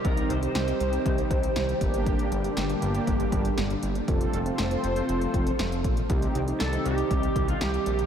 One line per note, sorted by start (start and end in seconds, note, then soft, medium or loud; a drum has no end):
0.00 1.77 C3 medium
0.00 1.77 D#3 medium
0.00 4.04 G3 medium
0.00 1.77 D#4 medium
0.00 4.04 G4 medium
0.05 0.22 C2 loud
0.05 0.35 C4 medium
0.05 0.35 D#4 medium
0.05 0.35 A#4 medium
0.05 0.30 A#4 loud
0.05 kick loud
0.05 closed hi-hat medium
0.17 closed hi-hat medium
0.30 0.48 C2 loud
0.30 1.77 C5 loud
0.30 closed hi-hat medium
0.42 0.63 C4 medium
0.42 0.63 D#4 medium
0.42 0.63 G4 medium
0.42 closed hi-hat medium
0.55 0.73 C2 loud
0.55 snare loud
0.55 closed hi-hat medium
0.68 1.48 C4 medium
0.68 1.48 D#4 medium
0.68 1.48 G4 medium
0.68 closed hi-hat soft
0.80 0.98 C2 loud
0.80 closed hi-hat medium
0.93 closed hi-hat medium
1.06 1.23 C2 loud
1.06 kick medium
1.06 closed hi-hat medium
1.18 closed hi-hat soft
1.31 1.48 C2 loud
1.31 kick medium
1.31 closed hi-hat medium
1.43 closed hi-hat medium
1.56 1.74 C2 loud
1.56 snare loud
1.56 closed hi-hat medium
1.69 closed hi-hat soft
1.81 2.16 G1 loud
1.81 4.06 A#2 medium
1.81 4.06 D3 medium
1.81 2.32 A#3 loud
1.81 2.31 D4 medium
1.81 4.06 D4 medium
1.81 2.32 G4 loud
1.81 kick medium
1.81 closed hi-hat medium
1.94 closed hi-hat soft
2.06 kick loud
2.06 closed hi-hat medium
2.19 closed hi-hat medium
2.32 2.49 G1 loud
2.32 closed hi-hat medium
2.44 2.64 A#3 medium
2.44 2.64 D4 medium
2.44 2.64 G4 medium
2.44 closed hi-hat medium
2.57 2.74 G1 loud
2.57 snare loud
2.57 closed hi-hat medium
2.69 3.50 A#3 medium
2.69 3.50 D4 medium
2.69 3.50 G4 medium
2.69 closed hi-hat medium
2.82 3.00 G1 loud
2.82 closed hi-hat medium
2.95 closed hi-hat medium
3.07 3.25 G1 loud
3.07 kick medium
3.07 closed hi-hat medium
3.20 closed hi-hat soft
3.32 3.50 G1 loud
3.32 kick medium
3.32 closed hi-hat medium
3.45 closed hi-hat medium
3.58 3.75 G1 loud
3.58 snare loud
3.58 closed hi-hat medium
3.70 closed hi-hat soft
3.83 4.00 G1 medium
3.83 closed hi-hat medium
3.95 closed hi-hat soft
4.08 4.26 F1 loud
4.08 8.06 C3 medium
4.08 6.08 F3 medium
4.08 6.08 A3 medium
4.08 4.38 C4 medium
4.08 6.08 F4 medium
4.08 4.38 F4 medium
4.08 6.08 A4 medium
4.08 4.38 A4 loud
4.08 kick loud
4.08 closed hi-hat medium
4.21 closed hi-hat medium
4.33 4.51 F1 loud
4.33 closed hi-hat medium
4.46 4.66 C4 medium
4.46 4.66 F4 medium
4.46 4.66 C5 medium
4.46 closed hi-hat soft
4.58 4.76 F1 loud
4.58 snare loud
4.58 closed hi-hat medium
4.71 5.52 C4 medium
4.71 5.52 F4 medium
4.71 5.52 C5 loud
4.71 closed hi-hat medium
4.84 5.01 F1 loud
4.84 closed hi-hat medium
4.96 closed hi-hat medium
5.09 5.27 F1 loud
5.09 closed hi-hat medium
5.21 closed hi-hat soft
5.34 5.52 F1 loud
5.34 kick medium
5.34 closed hi-hat medium
5.47 closed hi-hat medium
5.59 5.86 F1 loud
5.59 snare loud
5.59 closed hi-hat medium
5.72 closed hi-hat soft
5.84 6.02 A#1 medium
5.84 kick medium
5.84 closed hi-hat medium
5.97 closed hi-hat soft
6.10 6.27 C2 loud
6.10 8.06 D#3 medium
6.10 8.06 G3 medium
6.10 6.40 C4 medium
6.10 8.06 D#4 medium
6.10 6.40 D#4 medium
6.10 8.06 G4 medium
6.10 6.40 G4 loud
6.10 kick loud
6.10 closed hi-hat medium
6.22 closed hi-hat medium
6.35 6.53 C2 medium
6.35 closed hi-hat medium
6.48 6.68 C4 medium
6.48 6.68 D#4 medium
6.48 6.68 G4 medium
6.48 closed hi-hat medium
6.60 6.78 C2 loud
6.60 6.86 A4 medium
6.60 snare loud
6.60 closed hi-hat medium
6.73 7.53 C4 medium
6.73 7.53 D#4 medium
6.73 7.53 G4 medium
6.73 closed hi-hat soft
6.85 7.03 C2 loud
6.85 7.45 G4 medium
6.85 closed hi-hat medium
6.98 closed hi-hat medium
7.11 7.28 C2 loud
7.11 kick medium
7.11 closed hi-hat medium
7.23 closed hi-hat soft
7.36 7.53 C2 loud
7.36 kick medium
7.36 closed hi-hat medium
7.48 7.61 F4 medium
7.48 closed hi-hat medium
7.61 7.79 C2 medium
7.61 8.06 G4 medium
7.61 snare loud
7.61 closed hi-hat medium
7.74 closed hi-hat soft
7.86 8.04 A#1 medium
7.86 closed hi-hat medium
7.99 closed hi-hat soft